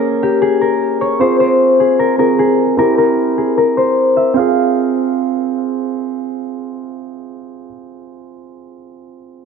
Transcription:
0, 0, Header, 1, 3, 480
1, 0, Start_track
1, 0, Key_signature, -4, "minor"
1, 0, Tempo, 394737
1, 1466, Time_signature, 4, 2, 24, 8
1, 11491, End_track
2, 0, Start_track
2, 0, Title_t, "Harp"
2, 0, Program_c, 0, 46
2, 0, Note_on_c, 0, 68, 88
2, 0, Note_on_c, 0, 70, 73
2, 0, Note_on_c, 0, 72, 78
2, 272, Note_off_c, 0, 72, 0
2, 276, Note_on_c, 0, 67, 71
2, 349, Note_off_c, 0, 68, 0
2, 507, Note_on_c, 0, 68, 85
2, 580, Note_off_c, 0, 67, 0
2, 741, Note_off_c, 0, 70, 0
2, 746, Note_on_c, 0, 70, 75
2, 1228, Note_on_c, 0, 73, 74
2, 1466, Note_on_c, 0, 72, 88
2, 1539, Note_off_c, 0, 73, 0
2, 1697, Note_off_c, 0, 72, 0
2, 1702, Note_on_c, 0, 72, 82
2, 2181, Note_off_c, 0, 68, 0
2, 2186, Note_on_c, 0, 68, 70
2, 2418, Note_off_c, 0, 70, 0
2, 2423, Note_on_c, 0, 70, 88
2, 2657, Note_off_c, 0, 70, 0
2, 2662, Note_on_c, 0, 70, 88
2, 2900, Note_off_c, 0, 68, 0
2, 2905, Note_on_c, 0, 68, 88
2, 3383, Note_off_c, 0, 70, 0
2, 3387, Note_on_c, 0, 70, 97
2, 3621, Note_off_c, 0, 70, 0
2, 3625, Note_on_c, 0, 70, 85
2, 4100, Note_off_c, 0, 68, 0
2, 4104, Note_on_c, 0, 68, 66
2, 4109, Note_off_c, 0, 72, 0
2, 4343, Note_off_c, 0, 70, 0
2, 4348, Note_on_c, 0, 70, 81
2, 4585, Note_on_c, 0, 72, 79
2, 5065, Note_on_c, 0, 76, 80
2, 5306, Note_on_c, 0, 77, 83
2, 5379, Note_off_c, 0, 76, 0
2, 6869, Note_off_c, 0, 68, 0
2, 6927, Note_off_c, 0, 70, 0
2, 6992, Note_off_c, 0, 72, 0
2, 7330, Note_off_c, 0, 77, 0
2, 11491, End_track
3, 0, Start_track
3, 0, Title_t, "Grand piano"
3, 0, Program_c, 1, 0
3, 0, Control_c, 1, 64, 127
3, 0, Note_on_c, 1, 58, 66
3, 0, Note_on_c, 1, 61, 62
3, 0, Note_on_c, 1, 68, 72
3, 1420, Note_off_c, 1, 58, 0
3, 1427, Note_off_c, 1, 61, 0
3, 1434, Note_off_c, 1, 68, 0
3, 1454, Note_on_c, 1, 60, 68
3, 1468, Note_on_c, 1, 65, 61
3, 1482, Control_c, 1, 64, 0
3, 1482, Note_on_c, 1, 68, 69
3, 1676, Control_c, 1, 64, 127
3, 2636, Note_off_c, 1, 60, 0
3, 2643, Note_off_c, 1, 65, 0
3, 2651, Note_off_c, 1, 68, 0
3, 2656, Note_on_c, 1, 60, 48
3, 2663, Note_on_c, 1, 65, 44
3, 2670, Note_on_c, 1, 68, 53
3, 3353, Note_off_c, 1, 60, 0
3, 3371, Note_on_c, 1, 60, 65
3, 3385, Note_off_c, 1, 65, 0
3, 3385, Note_on_c, 1, 64, 60
3, 3388, Note_off_c, 1, 68, 0
3, 3399, Note_on_c, 1, 67, 72
3, 3403, Control_c, 1, 64, 0
3, 3640, Control_c, 1, 64, 127
3, 5260, Note_off_c, 1, 60, 0
3, 5267, Note_off_c, 1, 64, 0
3, 5275, Note_off_c, 1, 67, 0
3, 5278, Note_on_c, 1, 60, 82
3, 5307, Note_on_c, 1, 65, 77
3, 5324, Control_c, 1, 64, 0
3, 5334, Note_on_c, 1, 68, 94
3, 5548, Control_c, 1, 64, 127
3, 9293, Note_off_c, 1, 60, 0
3, 9321, Note_off_c, 1, 65, 0
3, 9349, Note_off_c, 1, 68, 0
3, 11491, End_track
0, 0, End_of_file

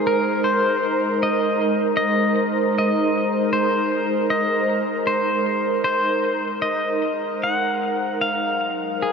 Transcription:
0, 0, Header, 1, 3, 480
1, 0, Start_track
1, 0, Tempo, 768246
1, 1245, Time_signature, 4, 2, 24, 8
1, 3169, Tempo, 781250
1, 5660, End_track
2, 0, Start_track
2, 0, Title_t, "Pedal steel guitar"
2, 0, Program_c, 0, 26
2, 43, Note_on_c, 0, 70, 85
2, 276, Note_on_c, 0, 72, 86
2, 292, Note_off_c, 0, 70, 0
2, 765, Note_off_c, 0, 72, 0
2, 768, Note_on_c, 0, 75, 86
2, 1101, Note_off_c, 0, 75, 0
2, 1230, Note_on_c, 0, 75, 97
2, 1731, Note_off_c, 0, 75, 0
2, 1740, Note_on_c, 0, 75, 90
2, 2202, Note_off_c, 0, 75, 0
2, 2205, Note_on_c, 0, 72, 84
2, 2686, Note_off_c, 0, 72, 0
2, 2688, Note_on_c, 0, 75, 91
2, 3024, Note_off_c, 0, 75, 0
2, 3168, Note_on_c, 0, 72, 94
2, 3635, Note_off_c, 0, 72, 0
2, 3643, Note_on_c, 0, 72, 97
2, 4118, Note_off_c, 0, 72, 0
2, 4120, Note_on_c, 0, 75, 90
2, 4621, Note_on_c, 0, 78, 78
2, 4622, Note_off_c, 0, 75, 0
2, 5097, Note_off_c, 0, 78, 0
2, 5100, Note_on_c, 0, 77, 93
2, 5588, Note_off_c, 0, 77, 0
2, 5597, Note_on_c, 0, 68, 93
2, 5660, Note_off_c, 0, 68, 0
2, 5660, End_track
3, 0, Start_track
3, 0, Title_t, "Ambient pad"
3, 0, Program_c, 1, 92
3, 0, Note_on_c, 1, 56, 67
3, 0, Note_on_c, 1, 63, 74
3, 0, Note_on_c, 1, 70, 92
3, 0, Note_on_c, 1, 72, 80
3, 5105, Note_off_c, 1, 56, 0
3, 5119, Note_on_c, 1, 54, 64
3, 5289, Note_on_c, 1, 61, 66
3, 5660, Note_off_c, 1, 54, 0
3, 5660, Note_off_c, 1, 61, 0
3, 5660, Note_off_c, 1, 63, 0
3, 5660, Note_off_c, 1, 70, 0
3, 5660, Note_off_c, 1, 72, 0
3, 5660, End_track
0, 0, End_of_file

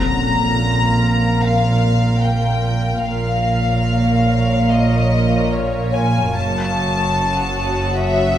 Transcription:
0, 0, Header, 1, 8, 480
1, 0, Start_track
1, 0, Tempo, 500000
1, 8046, End_track
2, 0, Start_track
2, 0, Title_t, "Violin section"
2, 0, Program_c, 0, 48
2, 6093, Note_on_c, 0, 85, 29
2, 6098, Note_on_c, 0, 87, 27
2, 6106, Note_on_c, 0, 88, 25
2, 8046, Note_off_c, 0, 85, 0
2, 8046, Note_off_c, 0, 87, 0
2, 8046, Note_off_c, 0, 88, 0
2, 8046, End_track
3, 0, Start_track
3, 0, Title_t, "Violin section"
3, 0, Program_c, 1, 48
3, 0, Note_on_c, 1, 82, 48
3, 1354, Note_off_c, 1, 82, 0
3, 1363, Note_on_c, 1, 77, 44
3, 2135, Note_on_c, 1, 79, 39
3, 2152, Note_off_c, 1, 77, 0
3, 2932, Note_off_c, 1, 79, 0
3, 2939, Note_on_c, 1, 77, 44
3, 4486, Note_off_c, 1, 77, 0
3, 4518, Note_on_c, 1, 75, 46
3, 5307, Note_off_c, 1, 75, 0
3, 5313, Note_on_c, 1, 73, 40
3, 5696, Note_on_c, 1, 80, 47
3, 5705, Note_off_c, 1, 73, 0
3, 6086, Note_on_c, 1, 81, 47
3, 6093, Note_off_c, 1, 80, 0
3, 7663, Note_on_c, 1, 76, 61
3, 7669, Note_off_c, 1, 81, 0
3, 8046, Note_off_c, 1, 76, 0
3, 8046, End_track
4, 0, Start_track
4, 0, Title_t, "Ambient pad"
4, 0, Program_c, 2, 92
4, 0, Note_on_c, 2, 70, 45
4, 0, Note_on_c, 2, 77, 45
4, 2897, Note_off_c, 2, 70, 0
4, 2898, Note_off_c, 2, 77, 0
4, 2925, Note_on_c, 2, 70, 50
4, 2927, Note_on_c, 2, 77, 43
4, 2928, Note_on_c, 2, 73, 46
4, 6050, Note_off_c, 2, 70, 0
4, 6051, Note_off_c, 2, 77, 0
4, 6052, Note_off_c, 2, 73, 0
4, 6090, Note_on_c, 2, 73, 48
4, 6097, Note_on_c, 2, 66, 50
4, 6097, Note_on_c, 2, 78, 47
4, 8046, Note_off_c, 2, 66, 0
4, 8046, Note_off_c, 2, 73, 0
4, 8046, Note_off_c, 2, 78, 0
4, 8046, End_track
5, 0, Start_track
5, 0, Title_t, "Felt piano"
5, 0, Program_c, 3, 0
5, 0, Control_c, 3, 64, 127
5, 0, Note_on_c, 3, 60, 21
5, 0, Note_on_c, 3, 72, 21
5, 2117, Note_off_c, 3, 72, 0
5, 2120, Note_off_c, 3, 60, 0
5, 6115, Control_c, 3, 64, 0
5, 6293, Control_c, 3, 64, 127
5, 8046, End_track
6, 0, Start_track
6, 0, Title_t, "Cello section"
6, 0, Program_c, 4, 48
6, 0, Note_on_c, 4, 46, 28
6, 2896, Note_off_c, 4, 46, 0
6, 2935, Note_on_c, 4, 46, 31
6, 6055, Note_off_c, 4, 46, 0
6, 6085, Note_on_c, 4, 42, 36
6, 8046, Note_off_c, 4, 42, 0
6, 8046, End_track
7, 0, Start_track
7, 0, Title_t, "Double bass section"
7, 0, Program_c, 5, 48
7, 0, Note_on_c, 5, 34, 32
7, 2895, Note_off_c, 5, 34, 0
7, 2930, Note_on_c, 5, 34, 35
7, 6053, Note_off_c, 5, 34, 0
7, 6089, Note_on_c, 5, 30, 43
7, 8046, Note_off_c, 5, 30, 0
7, 8046, End_track
8, 0, Start_track
8, 0, Title_t, "Impact"
8, 0, Program_c, 6, 103
8, 0, Note_on_c, 6, 60, 30
8, 2937, Note_off_c, 6, 60, 0
8, 8046, End_track
0, 0, End_of_file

